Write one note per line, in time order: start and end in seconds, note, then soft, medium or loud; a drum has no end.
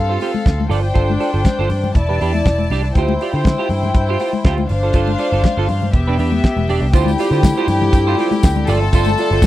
0.00 0.16 G2 medium
0.00 0.67 C4 medium
0.00 0.67 A4 medium
0.00 0.67 F5 medium
0.09 0.20 F4 medium
0.09 0.21 G4 medium
0.09 0.21 C5 medium
0.20 0.34 F4 medium
0.20 0.34 G4 medium
0.20 0.33 C5 medium
0.20 open hi-hat medium
0.20 muted conga soft
0.34 muted clean electric guitar stroke soft
0.34 high conga medium
0.45 0.66 D2 medium
0.45 muted clean electric guitar stroke soft
0.45 kick loud
0.45 snare medium
0.45 closed hi-hat medium
0.45 muted conga soft
0.58 muted clean electric guitar stroke soft
0.58 high conga medium
0.69 0.90 G1 medium
0.69 1.93 D4 medium
0.69 0.87 F4 medium
0.69 0.83 A4 medium
0.69 1.93 C5 medium
0.69 0.82 D5 medium
0.69 1.93 G5 medium
0.69 open hi-hat medium
0.69 muted conga soft
0.69 low conga medium
0.82 muted clean electric guitar stroke soft
0.94 1.16 G1 loud
0.94 1.11 F4 medium
0.94 1.12 A4 medium
0.94 1.12 C5 medium
0.94 kick medium
0.94 closed hi-hat medium
0.94 muted conga soft
1.10 high conga medium
1.20 1.32 F4 soft
1.20 1.32 A4 medium
1.20 1.32 D5 medium
1.20 open hi-hat medium
1.33 1.43 G1 medium
1.33 1.44 F4 soft
1.33 1.44 A4 soft
1.33 1.45 C5 medium
1.45 kick loud
1.45 snare loud
1.45 closed hi-hat medium
1.45 muted conga soft
1.45 high conga medium
1.59 1.68 G1 medium
1.59 1.70 F4 medium
1.59 1.70 A4 medium
1.59 1.71 C5 medium
1.70 1.91 G2 medium
1.70 open hi-hat medium
1.70 muted conga soft
1.70 low conga medium
1.84 muted clean electric guitar stroke soft
1.84 high conga soft
1.84 low conga medium
1.95 2.06 E1 loud
1.95 2.93 E4 medium
1.95 2.94 D5 medium
1.95 2.93 A5 medium
1.95 muted clean electric guitar stroke soft
1.95 kick loud
1.95 closed hi-hat medium
1.95 muted conga soft
2.09 2.18 E1 loud
2.09 2.20 D4 medium
2.09 2.21 G4 medium
2.09 2.21 B4 medium
2.21 2.41 E2 medium
2.21 2.34 D4 medium
2.21 2.34 G4 medium
2.21 2.33 B4 medium
2.21 open hi-hat medium
2.34 muted clean electric guitar stroke soft
2.34 high conga medium
2.45 2.66 E1 loud
2.45 muted clean electric guitar stroke soft
2.45 kick loud
2.45 snare loud
2.45 closed hi-hat medium
2.45 muted conga soft
2.58 muted clean electric guitar stroke medium
2.58 high conga medium
2.70 2.91 C2 medium
2.70 2.87 D4 medium
2.70 2.83 G4 medium
2.70 2.84 D5 loud
2.70 snare soft
2.70 open hi-hat medium
2.70 low conga medium
2.84 muted clean electric guitar stroke soft
2.95 3.16 D2 medium
2.95 4.67 E4 medium
2.95 3.13 F4 medium
2.95 3.13 G4 medium
2.95 4.67 C5 medium
2.95 3.13 C5 medium
2.95 4.67 G5 medium
2.95 kick loud
2.95 closed hi-hat medium
2.95 muted conga soft
3.08 high conga medium
3.19 3.34 F4 medium
3.19 3.34 G4 medium
3.19 3.34 D5 medium
3.19 open hi-hat medium
3.19 muted conga soft
3.34 3.54 D3 medium
3.34 3.45 F4 soft
3.34 3.45 G4 medium
3.34 3.46 C5 medium
3.45 muted clean electric guitar stroke soft
3.45 kick loud
3.45 snare loud
3.45 closed hi-hat medium
3.45 muted conga soft
3.45 high conga medium
3.58 3.69 F4 medium
3.58 3.70 G4 medium
3.58 3.70 C5 medium
3.69 3.90 G2 medium
3.69 muted clean electric guitar stroke soft
3.69 open hi-hat medium
3.69 muted conga soft
3.69 low conga medium
3.83 muted clean electric guitar stroke soft
3.83 high conga soft
3.83 low conga medium
3.95 4.15 G2 medium
3.95 muted clean electric guitar stroke soft
3.95 kick loud
3.95 closed hi-hat medium
4.09 4.19 F4 medium
4.09 4.19 G4 medium
4.09 4.20 C5 medium
4.19 4.33 F4 medium
4.19 4.34 G4 medium
4.19 4.33 C5 medium
4.19 open hi-hat medium
4.19 muted conga soft
4.33 muted clean electric guitar stroke soft
4.33 high conga medium
4.45 4.65 D2 medium
4.45 4.62 F4 medium
4.45 4.58 G4 medium
4.45 4.58 C5 medium
4.45 kick loud
4.45 snare loud
4.45 closed hi-hat medium
4.58 muted clean electric guitar stroke soft
4.58 high conga medium
4.69 4.90 G1 medium
4.69 5.92 D4 medium
4.69 5.92 C5 medium
4.69 5.92 F5 loud
4.69 muted clean electric guitar stroke soft
4.69 open hi-hat medium
4.69 muted conga soft
4.69 low conga medium
4.83 4.93 F4 soft
4.83 4.94 A4 medium
4.83 4.94 C5 medium
4.93 5.15 G1 loud
4.93 5.11 F4 medium
4.93 5.11 A4 medium
4.93 5.12 C5 medium
4.93 kick loud
4.93 closed hi-hat medium
4.93 muted conga soft
5.07 high conga medium
5.18 5.32 F4 medium
5.18 5.32 A4 medium
5.18 5.32 D5 medium
5.18 open hi-hat medium
5.32 5.42 G1 medium
5.32 5.42 F4 medium
5.32 5.43 A4 medium
5.32 5.43 C5 medium
5.44 kick loud
5.44 snare loud
5.44 closed hi-hat medium
5.44 high conga medium
5.57 5.67 G1 medium
5.57 5.68 F4 medium
5.57 5.69 A4 medium
5.57 5.69 C5 medium
5.68 5.90 G2 loud
5.68 open hi-hat medium
5.68 muted conga soft
5.68 low conga medium
5.82 muted clean electric guitar stroke soft
5.82 high conga medium
5.82 low conga medium
5.93 6.05 E1 medium
5.93 6.92 B3 medium
5.93 6.92 G4 medium
5.93 6.92 E5 medium
5.93 muted clean electric guitar stroke soft
5.93 kick loud
5.93 closed hi-hat medium
6.07 6.17 E1 medium
6.07 6.18 D4 medium
6.07 6.18 G4 medium
6.07 6.19 B4 medium
6.18 6.39 E2 medium
6.18 6.32 D4 medium
6.18 6.32 G4 medium
6.18 6.31 B4 medium
6.18 open hi-hat medium
6.18 muted conga soft
6.32 muted clean electric guitar stroke medium
6.32 high conga medium
6.44 muted clean electric guitar stroke soft
6.44 kick loud
6.44 snare loud
6.44 closed hi-hat medium
6.57 6.66 E1 medium
6.57 muted clean electric guitar stroke soft
6.57 high conga medium
6.68 6.79 E1 medium
6.68 6.86 D4 medium
6.68 6.82 G4 medium
6.68 6.82 D5 medium
6.68 open hi-hat medium
6.68 muted conga soft
6.68 low conga medium
6.81 6.91 C2 medium
6.81 muted clean electric guitar stroke soft
6.93 7.15 D2 loud
6.93 9.47 D3 medium
6.93 8.67 F3 medium
6.93 9.47 G3 medium
6.93 9.47 C4 medium
6.93 8.66 E4 loud
6.93 7.10 F4 medium
6.93 7.11 G4 medium
6.93 8.65 G4 medium
6.93 7.11 C5 medium
6.93 8.64 G5 medium
6.93 kick loud
6.93 closed hi-hat medium
6.93 tambourine medium
6.93 muted conga soft
7.06 tambourine medium
7.06 high conga loud
7.18 7.32 F4 medium
7.18 7.32 G4 medium
7.18 7.31 D5 medium
7.18 open hi-hat medium
7.18 tambourine medium
7.31 7.52 D3 medium
7.31 7.43 F4 medium
7.31 7.44 G4 medium
7.31 7.44 C5 medium
7.31 tambourine soft
7.42 kick loud
7.42 snare loud
7.42 closed hi-hat medium
7.42 tambourine loud
7.42 muted conga soft
7.42 high conga medium
7.58 7.68 F4 medium
7.58 7.69 G4 medium
7.58 7.69 C5 loud
7.68 7.88 G2 loud
7.68 muted clean electric guitar stroke soft
7.68 open hi-hat medium
7.68 tambourine medium
7.68 muted conga soft
7.68 low conga loud
7.82 muted clean electric guitar stroke soft
7.82 high conga medium
7.82 low conga medium
7.93 8.14 G2 loud
7.93 muted clean electric guitar stroke medium
7.93 kick loud
7.93 closed hi-hat medium
7.93 tambourine medium
7.93 muted conga soft
8.07 8.17 F4 medium
8.07 8.18 G4 medium
8.07 8.19 C5 medium
8.17 8.32 F4 medium
8.17 8.32 G4 medium
8.17 8.31 C5 medium
8.17 open hi-hat medium
8.17 muted conga soft
8.31 muted clean electric guitar stroke soft
8.31 tambourine soft
8.31 high conga medium
8.43 8.64 D2 medium
8.43 muted clean electric guitar stroke soft
8.43 kick loud
8.43 snare loud
8.43 closed hi-hat medium
8.43 tambourine loud
8.56 muted clean electric guitar stroke soft
8.56 high conga medium
8.67 8.89 G1 loud
8.67 9.47 A3 medium
8.67 8.84 F4 medium
8.67 9.47 F4 medium
8.67 9.47 A4 loud
8.67 8.82 A4 medium
8.67 8.82 D5 medium
8.67 9.47 A5 medium
8.67 snare soft
8.67 open hi-hat medium
8.67 tambourine medium
8.67 low conga medium
8.82 muted clean electric guitar stroke soft
8.93 9.14 G1 loud
8.93 9.10 F4 medium
8.93 9.10 A4 medium
8.93 9.11 C5 medium
8.93 kick loud
8.93 closed hi-hat medium
8.93 tambourine medium
9.05 tambourine medium
9.05 high conga medium
9.18 9.32 F4 medium
9.18 9.31 A4 medium
9.18 9.32 D5 medium
9.18 open hi-hat medium
9.18 tambourine soft
9.18 muted conga soft
9.31 9.40 G1 loud
9.31 9.42 F4 medium
9.31 9.42 A4 medium
9.31 9.43 C5 medium
9.42 muted clean electric guitar stroke medium
9.42 kick loud
9.42 closed hi-hat medium
9.42 tambourine loud
9.42 muted conga soft
9.42 high conga medium